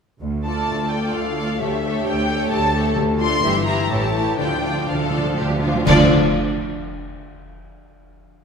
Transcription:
0.21 double bass section D2, cello section D2, harp D3
0.44 viola section A3 F4, harp D4, violin section A4 D5 A5
0.67 double bass section D2, cello section D2, harp F4
0.90 viola section A3 F4, violin section A4 D5 G5, harp A4
1.14 cello section D2, double bass section D2, harp F5, violin section F5
1.37 viola section A3 F4, harp A4, violin section A4 D5
1.60 double bass section D2, cello section D2, harp D3, timpani D3, viola section A3 G4, violin section A4 C#5 E5
1.83 viola section A3 G4, harp D4, violin section A4 C#5
2.06 cello section D2, double bass section D2, harp G4, violin section G5
2.29 viola section A3 G4, violin section A4 C#5
2.51 cello section D2, double bass section D2, harp G5, violin section A5
2.74 viola section A3 G4, harp A4, violin section A4 C#5
2.96 double bass section D2, cello section D2, timpani D3, harp D3
3.19 viola section A3 F4, harp F4 D5, violin section A4 D5 C6
3.42 double bass section G1, cello section G2, harp G2, viola section E3 E4, violin section G4 E5
3.66 viola section E3 E4, harp E4 E5, violin section G4 E5 A#5
3.90 double bass section A1, harp A2, cello section A2, viola section E3 E4, violin section G4 C#5 A5
4.13 viola section E3 E4, harp E4 C#5, violin section G4 C#5
4.38 double bass section D2, harp D3, cello section D3, timpani D3, viola section F3 D4, violin section F4 D5 G5
4.47 timpani D3
4.62 timpani D3, viola section F3 D4, harp D4, violin section F4 D5
4.78 timpani D3
4.87 double bass section D2, timpani D3, cello section D3, harp F4, violin section A4 F5
4.95 timpani D3
5.03 timpani D3
5.10 timpani D3, viola section F3 D4, harp D5
5.18 timpani D3
5.25 timpani D3
5.33 double bass section D2, timpani D3, cello section D3, violin section G4, harp F5
5.41 timpani D3
5.50 timpani D3
5.58 timpani D3, viola section D4
5.62 viola section F3, violin section F4, harp F4
5.67 timpani D3
5.74 timpani D3
5.83 double bass section D2, harp D3 F3 D4, cello section D3, timpani D3, viola section F3 D4, violin section F4 A4, concert bass drum, crash
5.88 harp F4 D5 F5, violin section D5

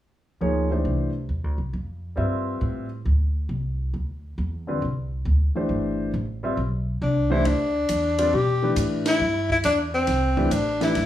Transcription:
0.41 upright bass D2, grand piano F3 A#3 D#4 G#4 C#5
0.71 grand piano E3 A3 D4 G4 C5
0.85 upright bass C2
1.29 upright bass E2
1.44 upright bass D2
1.58 upright bass C2
1.73 upright bass F2
2.16 upright bass G2, grand piano G3 C4 F4 B4 E5
2.61 upright bass A2
3.05 upright bass D2
3.49 upright bass C2
3.94 upright bass D2
4.38 upright bass E2
4.67 grand piano D3 G3 C4 F4 B4
4.82 upright bass C2
5.25 upright bass D2
5.55 grand piano E3 A3 D4 G4 C5, muted upright bass stroke
5.69 upright bass G1
6.14 upright bass A1
6.43 grand piano G3 C4 F4 B4 E5
6.57 upright bass B1
7.02 upright bass C2, tenor saxophone D4
7.30 grand piano E3 A3 D4 G4 C5, tenor saxophone E4
7.45 upright bass D2, tenor saxophone D4, ride
7.89 upright bass E2, hi-hat pedal, ride
8.18 grand piano G3 C4 F4 B4 D5, ride
8.33 upright bass B2, tenor saxophone G4
8.62 grand piano E3 A3 D4 G4 B4
8.76 upright bass A2, hi-hat pedal, ride
9.06 tenor saxophone E4, snare, ride
9.20 upright bass G2
9.50 tenor saxophone E4, kick
9.64 upright bass E2, tenor saxophone D4, hi-hat pedal, ride
9.95 tenor saxophone C4
10.07 upright bass C2, snare, ride
10.37 grand piano E3 A3 D4 G4 B4, kick
10.51 upright bass A1, tenor saxophone D4, hi-hat pedal, ride
10.81 grand piano E3 A3 D4 G4 B4, tenor saxophone E4, snare, ride
10.95 upright bass G1, snare, ride

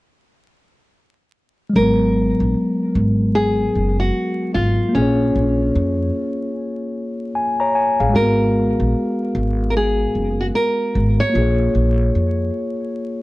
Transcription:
1.69 tine electric piano F#3 G#3
1.76 upright bass G#1, nylon-string guitar A#4, tine electric piano A#4
1.82 tine electric piano B3
2.40 upright bass A#1
2.95 upright bass G#1
3.35 nylon-string guitar G#4
3.75 upright bass F#1
4.00 nylon-string guitar F#4
4.54 upright bass G#1, nylon-string guitar F4
4.89 tine electric piano A#3
4.93 upright bass A#1, nylon-string guitar C#4, tine electric piano F4 G#4
5.02 tine electric piano C#5
5.35 upright bass A#1
5.75 upright bass F2
7.35 tine electric piano G#5
7.60 tine electric piano C#5 A#5
7.75 tine electric piano G#5
8.00 upright bass A1, tine electric piano G#4 F5
8.09 tine electric piano G#3
8.14 upright bass G#1, tine electric piano F#4, nylon-string guitar A#4
8.18 tine electric piano A#4
8.22 tine electric piano B3
8.80 upright bass A#1
9.35 upright bass G#1
9.70 nylon-string guitar A#4
9.77 nylon-string guitar G#4
10.15 upright bass F#1
10.41 nylon-string guitar F#4
10.55 nylon-string guitar A#4
10.95 upright bass G#1
11.20 nylon-string guitar C#5
11.30 tine electric piano A#3
11.34 upright bass A#1, tine electric piano F4 G#4
11.42 tine electric piano C#5
11.75 upright bass A#1
12.15 upright bass F2

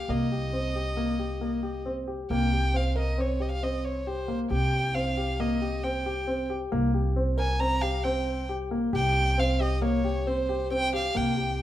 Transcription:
Already playing: violin F5
0.08 upright bass C2, grand piano A#3, violin D#5
0.32 grand piano G4
0.53 grand piano C4
0.75 grand piano G4
0.97 grand piano A#3
1.19 grand piano G4
1.41 grand piano A#3
1.63 grand piano G4
1.85 grand piano C4
2.08 grand piano G4
2.30 upright bass C2, grand piano A#3, violin G5
2.53 grand piano G4
2.74 grand piano C4, violin F5
2.96 grand piano A#4, violin D#5
3.18 grand piano C4, violin C#5
3.40 grand piano G4, violin D#5
3.51 violin F5
3.63 grand piano C4, violin D#5
3.85 violin C#5
4.07 grand piano G4, violin C5
4.28 grand piano A#3
4.50 upright bass C2, grand piano G4, violin G5
4.95 grand piano C4, violin F5
5.17 grand piano G4
5.40 grand piano A#3, violin D#5
5.62 grand piano G4
5.84 grand piano C4, violin G5
6.06 grand piano G4
6.27 grand piano C4
6.50 grand piano G4
6.72 upright bass C2, grand piano A#3
6.94 grand piano G4
7.16 grand piano C4
7.38 grand piano A#4, violin G#5
7.60 grand piano C4, violin A#5
7.82 grand piano G4, violin F5
8.03 grand piano C4, violin G5
8.49 grand piano G4
8.71 grand piano A#3
8.93 upright bass C2, grand piano G4, violin G5
9.38 grand piano C4, violin F5
9.60 grand piano G4, violin D#5
9.82 grand piano A#3, violin C#5
10.04 grand piano G4
10.27 grand piano C4, violin C5
10.49 grand piano G4
10.71 grand piano C4, violin G5
10.94 grand piano G4, violin F5
11.15 upright bass C2, grand piano A#3, violin G5
11.37 grand piano G4

